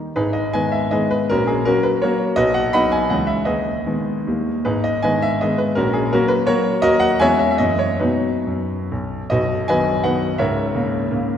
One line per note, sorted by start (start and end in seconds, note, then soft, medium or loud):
0.00 0.12 D#3 soft
0.00 0.12 G3 soft
0.00 0.12 D#4 soft
0.16 0.54 G#1 medium
0.16 0.34 D#4 medium
0.16 0.34 G#4 medium
0.16 0.35 B4 medium
0.33 0.53 D#5 medium
0.53 0.90 D#3 soft
0.53 0.89 G#3 medium
0.53 0.90 B3 soft
0.53 0.73 B4 medium
0.53 0.73 D#5 medium
0.53 0.74 G#5 loud
0.72 0.92 E5 medium
0.91 1.26 D#3 medium
0.91 1.26 G#3 medium
0.91 1.26 B3 medium
0.91 1.10 G#4 medium
0.91 1.09 B4 medium
0.91 1.11 D#5 medium
1.11 1.29 B4 medium
1.30 1.66 A#1 medium
1.30 1.48 C#4 medium
1.30 1.48 F#4 medium
1.30 1.48 A#4 loud
1.47 1.66 G#4 medium
1.65 1.99 F#3 medium
1.65 1.99 A#3 medium
1.65 1.84 C#4 medium
1.65 1.84 F#4 medium
1.65 1.85 A#4 loud
1.83 2.02 B4 medium
2.02 2.34 F#3 medium
2.02 2.34 A#3 medium
2.02 2.35 F#4 medium
2.02 2.35 A#4 medium
2.02 2.36 C#5 medium
2.36 2.73 B1 medium
2.36 2.53 F#4 medium
2.36 2.54 B4 medium
2.36 2.54 D#5 loud
2.54 2.73 F#5 medium
2.73 3.08 F#3 medium
2.73 3.08 B3 medium
2.73 3.08 D#4 medium
2.73 2.92 D#5 medium
2.73 2.92 F#5 medium
2.73 2.92 B5 loud
2.92 3.11 G#5 loud
3.10 3.46 C#2 medium
3.10 3.44 E3 soft
3.10 3.44 G#3 soft
3.10 3.44 C#4 soft
3.10 3.29 F#5 medium
3.27 3.46 E5 medium
3.45 3.85 D#2 medium
3.45 4.42 G#4 medium
3.45 4.42 B4 medium
3.45 4.46 D#5 medium
3.86 4.23 D#3 soft
3.86 4.23 G#3 soft
3.86 4.24 B3 soft
4.27 4.64 D#2 medium
4.27 4.61 D#3 soft
4.27 4.62 G3 soft
4.27 4.62 A#3 soft
4.65 5.02 G#1 medium
4.65 4.83 D#4 medium
4.65 4.83 G#4 medium
4.65 4.84 B4 medium
4.84 5.03 D#5 medium
5.03 5.37 D#3 medium
5.03 5.38 G#3 soft
5.03 5.38 B3 medium
5.03 5.22 B4 medium
5.03 5.22 D#5 medium
5.03 5.22 G#5 loud
5.22 5.41 E5 medium
5.41 5.73 D#3 medium
5.41 5.74 G#3 medium
5.41 5.74 B3 medium
5.41 5.58 G#4 medium
5.41 5.57 B4 medium
5.41 5.59 D#5 medium
5.58 5.76 B4 medium
5.75 6.11 A#1 medium
5.75 5.93 C#4 medium
5.75 5.93 F#4 medium
5.75 5.93 A#4 medium
5.93 6.12 G#4 medium
6.13 6.46 F#3 medium
6.13 6.46 A#3 medium
6.13 6.30 C#4 medium
6.13 6.30 F#4 medium
6.13 6.31 A#4 loud
6.28 6.47 B4 loud
6.47 6.79 F#3 medium
6.47 6.80 A#3 medium
6.47 6.80 F#4 medium
6.47 6.80 A#4 medium
6.47 6.82 C#5 loud
6.82 7.19 D#2 medium
6.82 7.16 F#3 medium
6.82 7.17 A#3 medium
6.82 7.00 F#4 medium
6.82 7.00 A#4 medium
6.82 7.00 D#5 loud
7.00 7.19 F#5 loud
7.20 7.58 E2 medium
7.20 7.55 E3 medium
7.20 7.56 G#3 medium
7.20 7.56 C#4 medium
7.20 7.39 C#5 loud
7.20 7.38 E5 medium
7.20 7.39 G#5 loud
7.39 7.49 E5 medium
7.51 7.60 E5 medium
7.58 7.99 F#2 medium
7.58 7.96 E3 soft
7.58 7.96 G#3 soft
7.58 7.97 A#3 soft
7.58 7.78 D#5 medium
7.79 8.00 C#5 medium
8.00 8.33 B2 medium
8.00 8.37 F#3 soft
8.00 8.37 B3 soft
8.00 8.87 D#4 medium
8.00 8.87 F#4 medium
8.00 8.91 B4 medium
8.47 8.78 F#2 soft
8.91 9.20 B1 medium
9.30 10.35 B0 medium
9.30 10.35 B1 medium
9.30 9.66 F#4 medium
9.30 9.65 B4 medium
9.30 9.67 D#5 medium
9.68 10.01 D#3 medium
9.68 10.01 F#3 medium
9.68 10.01 B3 medium
9.68 10.02 B4 medium
9.68 10.02 D#5 medium
9.68 10.04 G#5 loud
10.04 10.36 D#3 soft
10.04 10.36 F#3 medium
10.04 10.36 B3 medium
10.04 10.37 B4 medium
10.04 10.37 D#5 medium
10.04 10.38 F#5 medium
10.38 11.38 C#1 medium
10.38 11.38 C#2 medium
10.38 11.22 A#4 medium
10.38 11.22 C#5 medium
10.38 11.26 E5 medium
10.75 11.06 C#3 medium
10.75 11.06 A#3 medium
11.11 11.38 C#3 medium
11.11 11.38 A#3 medium